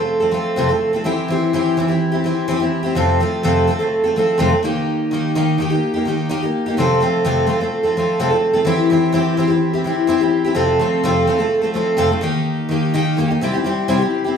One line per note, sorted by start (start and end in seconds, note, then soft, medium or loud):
0.00 0.22 F3 soft
0.00 0.21 A3 soft
0.00 0.21 C4 soft
0.00 0.19 A4 medium
0.20 0.30 F3 soft
0.20 0.31 A3 soft
0.20 0.33 C4 soft
0.20 0.33 A4 soft
0.31 0.56 F3 medium
0.31 0.57 A3 medium
0.31 0.57 C4 medium
0.31 0.57 A4 medium
0.56 0.69 F2 medium
0.56 0.70 C3 medium
0.56 0.70 F3 medium
0.56 0.70 A3 medium
0.56 0.69 C4 medium
0.56 0.68 A4 medium
0.69 0.95 F3 soft
0.69 0.94 A3 soft
0.69 0.93 C4 soft
0.69 0.92 A4 soft
0.93 1.04 F3 soft
0.93 1.04 A3 soft
0.93 1.04 C4 medium
0.93 1.05 A4 medium
1.04 1.27 E3 medium
1.04 1.29 C4 medium
1.04 1.29 E4 medium
1.04 1.30 G4 medium
1.28 1.52 E3 medium
1.28 1.53 C4 medium
1.28 1.53 E4 medium
1.28 1.54 G4 medium
1.53 1.76 E3 medium
1.53 1.76 C4 medium
1.53 1.77 E4 medium
1.53 1.78 G4 medium
1.77 1.89 E3 medium
1.77 1.89 C4 medium
1.77 1.88 E4 medium
1.77 1.87 G4 medium
1.88 2.14 C4 soft
1.88 2.12 E4 soft
1.88 2.11 G4 soft
2.12 2.24 C4 soft
2.12 2.25 E4 soft
2.12 2.24 G4 soft
2.24 2.47 E3 medium
2.24 2.47 C4 medium
2.24 2.48 E4 medium
2.24 2.49 G4 medium
2.48 2.60 E3 medium
2.48 2.60 C4 medium
2.48 2.61 E4 medium
2.48 2.59 G4 medium
2.60 2.85 C4 soft
2.60 2.83 E4 soft
2.60 2.82 G4 medium
2.83 2.96 C4 soft
2.83 2.96 E4 medium
2.83 2.96 G4 medium
2.95 3.20 F2 medium
2.95 3.20 C3 medium
2.95 3.19 F3 medium
2.95 3.19 A3 medium
2.95 3.21 C4 medium
2.95 3.21 A4 medium
3.20 3.43 F3 medium
3.20 3.43 A3 medium
3.20 3.44 C4 medium
3.20 3.44 A4 medium
3.43 3.68 F2 medium
3.43 3.68 C3 medium
3.43 3.66 F3 medium
3.43 3.67 A3 medium
3.43 3.68 C4 medium
3.43 3.68 A4 medium
3.67 3.80 F3 medium
3.67 3.80 A3 medium
3.67 3.79 C4 medium
3.67 3.78 A4 medium
3.79 4.05 F3 soft
3.79 4.04 A3 soft
3.79 4.03 C4 soft
3.79 4.03 A4 medium
4.04 4.15 F3 soft
4.04 4.16 A3 soft
4.04 4.16 C4 soft
4.04 4.16 A4 soft
4.16 4.38 F3 medium
4.16 4.39 A3 medium
4.16 4.39 C4 medium
4.16 4.39 A4 medium
4.38 4.50 F2 medium
4.38 4.51 C3 medium
4.38 4.51 F3 medium
4.38 4.51 A3 medium
4.38 4.49 C4 medium
4.38 4.48 A4 medium
4.50 4.62 F3 soft
4.50 4.64 A3 soft
4.50 4.63 C4 soft
4.50 4.62 A4 soft
4.63 5.10 D#3 medium
4.63 5.11 A#3 medium
4.63 5.11 D#4 medium
4.63 5.12 G4 medium
5.11 5.34 D#3 medium
5.11 5.35 A#3 medium
5.11 5.36 D#4 medium
5.11 5.36 G4 medium
5.35 5.57 D#3 medium
5.35 5.59 A#3 medium
5.35 5.60 D#4 medium
5.35 5.60 G4 medium
5.58 5.70 D#3 medium
5.58 5.71 A#3 medium
5.58 5.71 D#4 medium
5.58 5.69 G4 medium
5.70 5.96 A#3 soft
5.70 5.95 D#4 soft
5.70 5.93 G4 medium
5.94 6.06 A#3 soft
5.94 6.07 D#4 soft
5.94 6.06 G4 medium
6.05 6.28 D#3 medium
6.05 6.29 A#3 medium
6.05 6.30 D#4 medium
6.05 6.30 G4 medium
6.29 6.41 D#3 medium
6.29 6.42 A#3 medium
6.29 6.42 D#4 medium
6.29 6.41 G4 medium
6.42 6.67 A#3 soft
6.42 6.66 D#4 soft
6.42 6.65 G4 soft
6.66 6.79 D#4 soft
6.66 6.78 G4 medium
6.70 6.79 A#3 soft
6.77 7.01 F2 medium
6.77 7.01 C3 medium
6.77 6.99 F3 medium
6.77 7.00 A3 medium
6.77 7.01 C4 medium
6.77 7.02 A4 medium
7.00 7.24 F3 medium
7.00 7.25 A3 medium
7.00 7.25 C4 medium
7.00 7.26 A4 medium
7.24 7.48 F2 medium
7.24 7.48 C3 medium
7.24 7.45 F3 medium
7.24 7.46 A3 medium
7.24 7.48 C4 medium
7.24 7.49 A4 medium
7.47 7.59 F3 medium
7.47 7.60 A3 medium
7.47 7.60 C4 medium
7.47 7.59 A4 medium
7.60 7.86 F3 soft
7.60 7.84 A3 soft
7.60 7.83 C4 soft
7.60 7.82 A4 soft
7.83 7.96 F3 soft
7.83 7.97 A3 soft
7.83 7.96 C4 soft
7.83 7.96 A4 soft
7.97 8.19 F3 medium
7.97 8.19 A3 medium
7.97 8.20 C4 medium
7.97 8.20 A4 medium
8.20 8.32 F2 medium
8.20 8.32 C3 medium
8.20 8.32 F3 medium
8.20 8.32 A3 medium
8.20 8.31 C4 medium
8.20 8.29 A4 medium
8.31 8.55 F3 soft
8.31 8.55 A3 soft
8.31 8.53 C4 soft
8.31 8.52 A4 soft
8.53 8.64 F3 soft
8.53 8.66 A3 soft
8.53 8.65 C4 medium
8.53 8.66 A4 medium
8.65 8.89 E3 medium
8.65 8.90 C4 medium
8.65 8.91 E4 medium
8.65 8.91 G4 medium
8.90 9.11 E3 medium
8.90 9.12 C4 medium
8.90 9.13 E4 medium
8.90 9.14 G4 medium
9.12 9.36 E3 medium
9.12 9.37 C4 medium
9.12 9.38 E4 medium
9.12 9.39 G4 medium
9.37 9.50 E3 medium
9.37 9.50 C4 medium
9.37 9.49 E4 medium
9.37 9.46 G4 medium
9.48 9.74 E4 soft
9.48 9.72 G4 medium
9.52 9.75 C4 soft
9.74 9.84 C4 soft
9.74 9.86 E4 soft
9.74 9.86 G4 medium
9.84 10.06 E3 medium
9.84 10.07 C4 medium
9.84 10.07 E4 medium
9.84 10.08 G4 medium
10.07 10.21 E3 medium
10.07 10.21 C4 medium
10.07 10.21 E4 medium
10.07 10.19 G4 medium
10.21 10.46 C4 soft
10.21 10.45 E4 soft
10.21 10.43 G4 medium
10.45 10.55 C4 soft
10.45 10.56 E4 medium
10.45 10.56 G4 medium
10.55 10.80 F2 medium
10.55 10.80 C3 medium
10.55 10.78 F3 medium
10.55 10.79 A3 medium
10.55 10.80 C4 medium
10.55 10.81 A4 medium
10.79 11.04 F3 medium
10.79 11.03 A3 medium
10.79 11.04 C4 medium
10.79 11.04 A4 medium
11.04 11.28 F2 medium
11.04 11.28 C3 medium
11.04 11.26 F3 medium
11.04 11.26 A3 medium
11.04 11.28 C4 medium
11.04 11.28 A4 medium
11.27 11.40 F3 medium
11.27 11.39 A3 medium
11.27 11.38 C4 medium
11.27 11.38 A4 medium
11.39 11.63 F3 soft
11.39 11.63 A3 soft
11.39 11.62 C4 soft
11.39 11.60 A4 medium
11.62 11.73 F3 soft
11.62 11.74 A3 soft
11.62 11.75 C4 soft
11.62 11.75 A4 medium
11.74 11.97 F3 medium
11.74 11.97 A3 medium
11.74 11.97 C4 medium
11.74 11.97 A4 medium
11.97 12.10 F2 medium
11.97 12.11 C3 medium
11.97 12.11 F3 medium
11.97 12.11 A3 medium
11.97 12.11 C4 medium
11.97 12.10 A4 medium
12.11 12.21 F3 soft
12.11 12.22 A3 soft
12.11 12.23 C4 soft
12.11 12.23 A4 soft
12.21 12.67 D#3 medium
12.21 12.70 A#3 medium
12.21 12.70 D#4 medium
12.21 12.71 G4 medium
12.69 12.92 D#3 medium
12.69 12.93 A#3 medium
12.69 12.93 D#4 medium
12.69 12.94 G4 medium
12.94 13.16 D#3 medium
12.94 13.17 A#3 medium
12.94 13.18 D#4 medium
12.94 13.19 G4 medium
13.17 13.30 D#3 medium
13.17 13.31 A#3 medium
13.17 13.29 D#4 medium
13.17 13.27 G4 medium
13.28 13.43 A#3 soft
13.28 13.43 D#4 soft
13.28 13.41 G4 soft
13.41 13.54 C3 medium
13.41 13.55 G3 medium
13.41 13.55 C4 medium
13.41 13.54 E4 medium
13.41 13.52 G4 medium
13.54 13.64 C4 soft
13.54 13.65 E4 soft
13.54 13.66 G4 medium
13.64 13.87 G3 medium
13.64 13.88 C4 medium
13.64 13.88 E4 medium
13.64 13.89 G4 medium
13.88 14.01 C3 medium
13.88 14.01 G3 medium
13.88 14.02 C4 medium
13.88 14.01 E4 medium
13.88 13.98 G4 medium
13.99 14.25 E4 soft
13.99 14.23 G4 medium
14.03 14.27 C4 soft
14.25 14.37 C4 soft
14.25 14.37 E4 medium
14.25 14.37 G4 medium